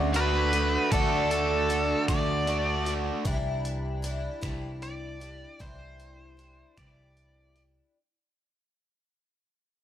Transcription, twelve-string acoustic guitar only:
0.00 0.54 D3 medium
0.00 0.53 A3 medium
0.00 0.54 D4 medium
0.00 0.52 F#4 medium
0.53 0.91 A3 soft
0.53 0.92 D4 soft
0.53 0.91 F#4 soft
0.91 1.68 D3 medium
0.91 1.69 A3 medium
0.91 1.70 D4 medium
0.91 1.70 F#4 medium
1.69 2.08 D3 medium
1.69 2.08 A3 medium
1.69 2.08 D4 medium
1.69 2.07 F#4 medium
2.08 2.87 D3 medium
2.08 2.87 A3 medium
2.08 2.87 D4 medium
2.08 2.84 F#4 medium
2.85 3.25 A3 soft
2.85 3.25 D4 soft
2.85 3.25 F#4 soft
3.25 4.07 C3 medium
3.25 4.02 E3 medium
3.25 4.03 G3 medium
3.25 4.04 D4 medium
3.25 4.05 E4 medium
4.02 4.42 E3 medium
4.02 4.42 G3 medium
4.02 4.41 D4 medium
4.02 4.40 E4 medium
4.41 5.24 C3 medium
4.41 5.24 E3 medium
4.41 5.23 G3 medium
4.41 5.21 D4 medium
4.41 5.20 E4 medium
5.20 5.59 G3 soft
5.20 5.59 D4 soft
5.20 5.60 E4 soft
5.59 6.38 C3 medium
5.59 6.36 E3 medium
5.59 6.37 G3 medium
5.59 6.38 D4 medium
5.59 6.39 E4 medium
6.37 6.77 E3 medium
6.37 6.77 G3 medium
6.37 6.76 D4 medium
6.37 6.75 E4 medium
6.77 7.57 C3 soft
6.77 7.56 E3 medium
6.77 7.56 G3 medium
6.77 7.56 D4 medium
6.77 7.55 E4 medium
7.56 7.97 G3 soft
7.56 7.96 D4 soft
7.56 7.95 E4 soft

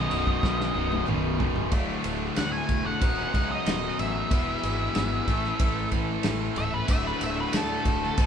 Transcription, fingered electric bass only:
0.10 0.37 B0 medium
0.44 0.70 B1 medium
0.75 1.02 B0 medium
1.08 1.72 B0 medium
1.72 1.95 D1 medium
2.05 2.28 D1 medium
2.37 2.61 D2 medium
2.69 2.93 E1 medium
3.02 3.25 D#1 medium
3.34 3.58 C#2 medium
3.67 3.90 D#1 medium
3.99 4.22 A1 medium
4.31 4.54 E1 loud
4.63 4.87 G#1 medium
4.96 5.19 G#1 medium
5.28 5.51 A1 medium
5.60 5.83 A1 medium
5.92 6.16 A1 medium
6.25 6.48 A1 medium
6.56 6.80 C#1 medium
6.89 7.12 D1 medium
7.21 7.45 D1 medium
7.54 7.77 D2 medium
7.85 8.09 D1 medium
8.18 8.26 D#1 medium

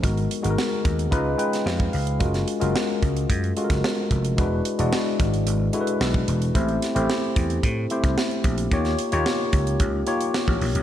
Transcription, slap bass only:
0.04 0.26 G#1 medium
0.45 0.55 G#1 medium
0.85 1.07 D#2 medium
1.12 1.34 C#2 medium
1.66 1.88 F2 loud
1.94 2.22 C#2 medium
2.21 2.43 F#1 loud
2.62 2.73 F#1 medium
3.02 3.24 C#2 medium
3.29 3.51 F#2 loud
3.70 3.81 F#1 medium
4.11 4.33 F1 medium
4.38 4.60 E1 medium
4.79 4.90 E1 medium
5.20 5.41 G#1 medium
5.46 5.68 G#1 loud
6.00 6.22 B1 medium
6.28 6.50 E1 medium
6.55 6.77 A1 loud
6.96 7.07 A1 medium
7.36 7.58 E2 medium
7.63 7.85 A2 loud
8.04 8.15 C2 medium
8.44 8.66 A#1 medium
8.72 8.94 D#2 loud
9.13 9.24 D#2 medium
9.53 9.75 C#2 medium
9.80 10.02 C#2 medium
10.48 10.59 A1 medium
10.61 10.72 A#1 medium
10.75 10.83 C2 medium

